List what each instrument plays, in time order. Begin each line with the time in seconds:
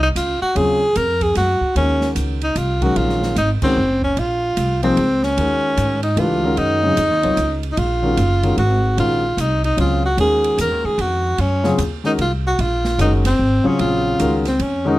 Already playing: upright bass C2
0.03 tenor saxophone D#4
0.15 upright bass C#2, tenor saxophone F4, hi-hat pedal, ride
0.42 tenor saxophone F#4, muted upright bass stroke
0.55 upright bass D#2, grand piano C#3 F#3 C4 F4 G#4, tenor saxophone G#4, ride
0.95 upright bass F2, tenor saxophone A#4, hi-hat pedal, ride
1.21 tenor saxophone G#4, kick, ride
1.35 upright bass F#2, tenor saxophone F#4, snare, ride
1.61 muted upright bass stroke, kick
1.75 upright bass D#2, grand piano D#3 G#3 C#4 F#4 A#4, tenor saxophone C#4, ride
2.01 snare
2.15 upright bass C#2, hi-hat pedal, ride
2.41 tenor saxophone D#4, ride
2.56 upright bass C2, tenor saxophone F4, hi-hat pedal, ride
2.80 grand piano D#3 F#3 G#3 C#4 A#4, tenor saxophone F#4, kick, ride
2.96 upright bass A#1, tenor saxophone F4, ride
3.09 snare
3.23 snare
3.36 upright bass G#1, tenor saxophone D#4, hi-hat pedal, ride
3.62 grand piano D#3 G#3 C#4 F#4 A#4, tenor saxophone C4, muted upright bass stroke, kick, crash
3.76 upright bass F#1
4.02 tenor saxophone C#4, kick
4.17 upright bass A#1, tenor saxophone F4, ride
4.57 upright bass C2, hi-hat pedal, ride
4.83 grand piano F3 A#3 D#4 G#4 C5, tenor saxophone C4, ride
4.97 upright bass C#2, ride
5.23 tenor saxophone C#4, snare
5.37 upright bass D#2, grand piano D#3 G#3 C#4 F#4 A#4, ride
5.77 upright bass G#2, hi-hat pedal, ride
6.03 tenor saxophone D#4, ride
6.17 upright bass C#2, grand piano E3 A3 D4 G4 B4, tenor saxophone F4, ride
6.43 grand piano D#3 G#3 C#4 F#4 A#4
6.57 upright bass F#2, tenor saxophone D#4, ride
6.83 grand piano C#3 F#3 C4 F4 G#4
6.97 upright bass F2, hi-hat pedal, ride
7.11 upright bass D#2
7.22 upright bass C#2, grand piano F#3 C4 F4 A#4 C#5, ride
7.37 upright bass C#2, hi-hat pedal, ride
7.63 ride
7.72 tenor saxophone D#4
7.77 upright bass A#1, tenor saxophone F4, ride
8.02 grand piano D#3 G#3 C#4 F#4 A#4
8.17 upright bass F#1, hi-hat pedal, ride
8.43 grand piano D#3 G#3 C#4 F#4 A#4, ride
8.57 upright bass G#1, tenor saxophone F#4, ride
8.96 upright bass A#1, grand piano D#3 G#3 C#4 F#4 A#4, tenor saxophone F4, ride
9.37 upright bass C2, tenor saxophone D#4, hi-hat pedal, ride
9.64 tenor saxophone D#4, ride
9.77 upright bass C#2, grand piano C#3 F#3 C4 F4 G#4, tenor saxophone F4, ride
10.06 tenor saxophone F#4
10.17 upright bass D#2, grand piano D#3 G#3 C#4 F#4 A#4, tenor saxophone G#4, ride
10.44 ride
10.58 upright bass E2, tenor saxophone A#4, hi-hat pedal, ride
10.71 upright bass D#2
10.84 upright bass C#2, tenor saxophone G#4
10.98 upright bass F2, tenor saxophone F#4, ride
11.38 upright bass F#2, tenor saxophone C#4, ride
11.64 grand piano C#3 F#3 C4 F4 G#4, snare
11.78 upright bass D#2, hi-hat pedal, ride
12.04 grand piano D#3 G#3 C#4 F#4 A#4, tenor saxophone D#4, snare
12.18 upright bass C2, tenor saxophone F4, ride
12.47 tenor saxophone F#4
12.59 upright bass A#1, tenor saxophone F4, ride
12.85 snare
12.98 upright bass F#1, grand piano D#3 G#3 C#4 F#4 A#4, tenor saxophone D#4, hi-hat pedal, ride
13.25 tenor saxophone C4, snare, ride
13.39 upright bass G#1
13.64 grand piano C#3 F#3 C4 F4 G#4, tenor saxophone C#4, muted upright bass stroke
13.79 upright bass A#1, tenor saxophone F4, ride
14.19 upright bass C#2, grand piano D#3 G#3 C#4 F#4 A#4, hi-hat pedal, ride
14.45 tenor saxophone C4, snare, ride
14.59 upright bass F2, tenor saxophone C#4, ride
14.85 grand piano D#3 G#3 C#4 F#4 A#4, tenor saxophone D#4